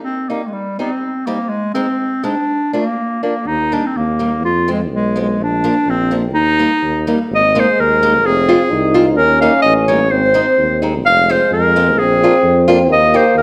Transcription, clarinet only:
0.03 0.31 C4 medium
0.29 0.49 A#3 medium
0.47 0.54 G#3 medium
0.53 0.78 G3 medium
0.79 1.28 C4 medium
1.26 1.51 A#3 medium
1.49 1.73 G#3 medium
1.74 2.26 C4 medium
2.24 2.73 D4 medium
2.74 3.19 A#3 medium
3.23 3.49 A#3 medium
3.47 3.75 D#4 medium
3.74 3.88 D4 medium
3.86 3.99 C4 medium
3.97 4.44 A#3 medium
4.45 4.68 F4 medium
4.72 4.81 G#3 medium
4.94 5.17 G#3 medium
5.21 5.44 G#3 medium
5.43 5.91 D4 medium
5.90 6.14 C4 medium
6.34 7.05 D#4 loud
7.35 7.61 D#5 medium
7.59 7.82 C5 medium
7.80 8.27 A#4 loud
8.26 8.97 G#4 medium
9.16 9.40 A#4 loud
9.41 9.62 F5 medium
9.62 9.74 D#5 loud
9.88 10.12 C#5 medium
10.10 10.84 C5 medium
11.06 11.32 F5 loud
11.31 11.52 C5 medium
11.53 12.00 A#4 medium
11.99 12.69 G#4 medium
12.92 13.18 D#5 loud
13.16 13.36 C5 medium
13.38 13.43 A#4 loud

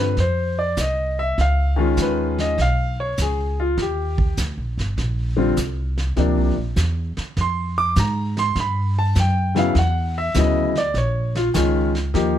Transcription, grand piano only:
0.00 0.12 D3 medium
0.00 0.12 G3 medium
0.00 0.13 C4 medium
0.00 0.13 F4 medium
0.00 0.17 B4 medium
0.20 0.58 C5 medium
0.59 0.77 D5 medium
0.80 1.18 D#5 medium
1.19 1.37 E5 medium
1.41 1.79 F5 medium
1.76 2.53 D#3 medium
1.76 2.53 G#3 medium
1.76 2.53 C#4 medium
1.76 2.54 F4 medium
1.76 1.98 G#4 medium
2.02 2.39 B4 medium
2.40 2.58 D#5 medium
2.62 2.99 F5 loud
3.00 3.18 C#5 medium
3.22 3.59 G#4 medium
3.60 3.78 F4 medium
3.82 4.35 G4 medium
5.36 5.55 D3 medium
5.36 5.55 G3 medium
5.36 5.55 C4 medium
5.36 5.55 F4 medium
6.17 6.53 C3 medium
6.17 6.54 F3 medium
6.17 6.54 A#3 medium
6.17 6.54 D4 medium
7.41 7.78 C6 medium
7.78 7.96 D6 loud
8.00 8.37 A#5 medium
8.39 8.57 C6 loud
8.60 8.97 B5 medium
8.99 9.16 A5 medium
9.20 9.57 G5 medium
9.55 9.73 C#3 medium
9.55 9.73 F#3 medium
9.55 9.73 B3 medium
9.55 9.74 E4 medium
9.59 9.76 F5 medium
9.79 10.16 F#5 medium
10.18 10.35 E5 medium
10.35 10.71 C#3 medium
10.35 10.72 F#3 medium
10.35 10.72 B3 medium
10.35 10.72 E4 medium
10.35 10.76 D#5 medium
10.78 10.95 D5 medium
10.98 11.35 C#5 medium
11.36 11.47 F4 medium
11.54 11.90 D#3 medium
11.54 11.91 G#3 medium
11.54 11.91 C#4 medium
11.54 11.91 F4 medium
12.14 12.39 F3 medium
12.14 12.39 A#3 medium
12.14 12.39 D#4 medium
12.14 12.39 G4 medium

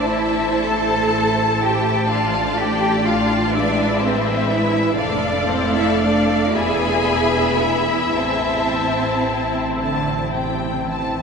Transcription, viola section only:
0.00 3.50 A3 medium
0.00 2.09 E4 medium
2.10 3.51 D4 medium
3.54 4.94 G#3 soft
3.54 4.96 E4 medium
4.96 6.56 A3 medium
4.96 6.52 A4 medium
6.56 8.16 B3 medium
6.56 11.20 E4 soft
8.17 11.16 C4 soft

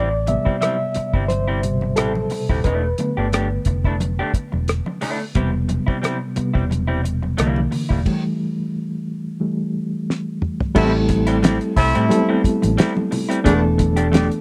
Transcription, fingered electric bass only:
0.00 0.36 A1 medium
0.97 muted fingered electric bass stroke soft
1.14 1.98 G1 medium
1.98 2.25 A1 medium
2.50 2.62 D#1 medium
2.65 2.92 E1 medium
3.18 3.57 G1 medium
3.66 4.20 F1 medium
4.34 muted fingered electric bass stroke soft
4.53 4.80 E1 medium
5.36 5.77 E1 loud
6.37 muted fingered electric bass stroke soft
6.56 7.34 E1 medium
7.39 7.66 C2 medium
7.91 8.03 E1 medium
10.76 11.58 A1 loud
11.77 11.92 C2 medium
11.96 12.08 A2 medium
12.45 muted fingered electric bass stroke soft
12.64 12.76 A1 medium
13.46 14.28 E1 loud

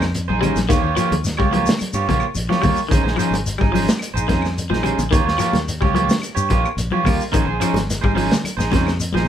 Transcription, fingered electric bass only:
0.00 0.31 F2 loud
0.29 0.54 A#1 medium
0.56 0.68 A#1 medium
0.70 0.83 D#2 loud
0.83 0.96 D#2 medium
1.11 1.37 D#2 medium
1.40 1.65 C#2 medium
1.95 2.07 G2 medium
2.09 2.21 A#1 loud
2.35 2.48 A#1 medium
2.64 2.76 D#2 medium
2.92 3.03 A#1 medium
3.03 3.16 A#1 medium
3.31 3.57 G#1 medium
3.62 3.87 G#1 medium
4.14 4.27 A#1 medium
4.29 4.72 F2 medium
4.71 4.97 A#1 medium
4.98 5.11 A#1 medium
5.12 5.25 D#2 loud
5.25 5.38 D#2 medium
5.53 5.79 D#2 medium
5.82 6.07 C#2 medium
6.36 6.49 G2 medium
6.51 6.64 A#1 loud
6.77 6.90 A#1 medium
7.06 7.19 D#2 medium
7.34 7.46 A#1 loud
7.47 7.60 A#1 medium
7.74 8.01 G#1 medium
8.04 8.30 G#1 medium
8.57 8.71 A#1 medium
8.73 9.16 F2 medium
9.15 9.28 A#1 medium

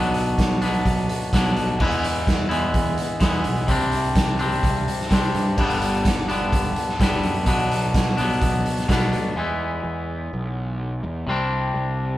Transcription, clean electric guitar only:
0.00 0.59 B2 loud
0.00 0.60 F#3 loud
0.00 0.63 B3 loud
0.00 0.61 D4 loud
0.62 1.33 F#3 medium
0.62 1.32 B3 medium
0.62 1.31 D4 medium
0.66 1.32 B2 medium
1.33 1.79 B2 medium
1.33 1.79 F#3 medium
1.33 1.79 B3 medium
1.33 1.80 D4 medium
1.79 2.49 E3 medium
1.79 2.50 G#3 medium
1.79 2.49 B3 medium
1.79 2.48 E4 loud
2.49 3.19 E3 medium
2.49 3.20 G#3 medium
2.49 3.20 B3 medium
2.49 3.19 E4 medium
3.20 3.66 E3 medium
3.20 3.67 G#3 medium
3.20 3.68 B3 medium
3.24 3.69 E4 medium
3.67 4.37 C3 medium
3.67 4.41 G3 medium
3.67 4.38 C4 medium
3.67 4.39 D4 loud
4.39 5.08 C3 medium
4.39 5.10 G3 medium
4.39 5.09 C4 medium
4.39 5.13 D4 medium
5.10 5.56 C3 medium
5.10 5.56 G3 medium
5.10 5.57 C4 medium
5.10 5.60 D4 medium
5.57 6.27 G2 medium
5.57 6.28 D3 medium
5.57 6.28 G3 loud
5.57 6.29 B3 loud
5.57 6.28 D4 medium
6.28 6.98 G2 medium
6.28 6.99 D3 medium
6.28 6.99 G3 medium
6.28 7.02 B3 medium
6.28 6.98 D4 medium
7.00 7.45 G2 medium
7.00 7.45 D3 medium
7.00 7.46 G3 medium
7.00 7.47 B3 medium
7.00 7.47 D4 medium
7.45 8.16 B2 medium
7.45 8.16 F#3 medium
7.45 8.17 B3 loud
7.45 8.16 D4 loud
8.17 8.87 B2 medium
8.17 8.88 F#3 medium
8.17 8.88 B3 medium
8.17 8.87 D4 medium
8.88 9.35 B2 medium
8.88 9.35 F#3 medium
8.88 9.36 B3 medium
8.88 9.37 D4 medium
9.36 11.26 E3 medium
9.36 11.26 G#3 medium
9.36 11.27 B3 medium
9.36 11.27 E4 medium
11.27 12.18 C3 medium
11.27 12.18 G3 medium
11.27 12.18 C4 loud
11.27 12.18 D4 loud

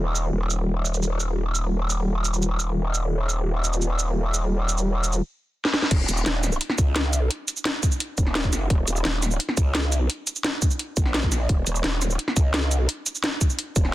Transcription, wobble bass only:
0.00 0.31 D#1 medium
0.33 5.21 D#1 medium
5.91 6.07 D#1 loud
6.08 6.25 D#1 loud
6.26 6.59 D#1 medium
6.78 7.29 C#2 loud
8.18 8.51 D#1 loud
8.53 8.69 F#1 medium
8.70 8.86 D#1 medium
8.88 9.04 D#1 medium
9.05 9.39 D#1 medium
9.57 10.08 C#2 loud
10.97 11.48 A#1 loud
11.49 11.65 D#1 medium
11.67 11.83 D#1 medium
11.84 12.18 D#1 loud
12.37 12.87 C#2 loud
13.76 13.94 D#1 loud

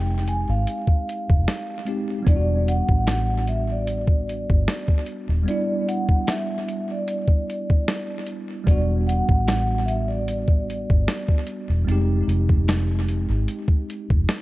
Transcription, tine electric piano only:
0.00 1.81 G#3 medium
0.00 1.83 C4 medium
0.00 1.84 D#4 medium
0.00 1.85 G4 medium
1.85 2.26 G#3 medium
1.85 2.27 C4 medium
1.85 2.27 D#4 medium
1.85 2.28 G4 medium
2.22 5.41 G3 medium
2.22 5.42 B3 medium
2.27 5.43 D4 medium
2.27 2.35 E4 medium
2.36 5.47 F#4 medium
5.43 8.61 G3 medium
5.43 8.62 B3 medium
5.48 8.64 D4 medium
5.48 8.65 E4 medium
8.64 11.81 G3 medium
8.64 11.83 B3 medium
8.69 11.84 D4 medium
8.69 11.85 F#4 medium
11.85 11.93 G3 medium
11.85 14.42 C4 medium
11.89 14.42 G#3 medium
11.89 14.42 D#4 medium
11.89 14.42 G4 medium

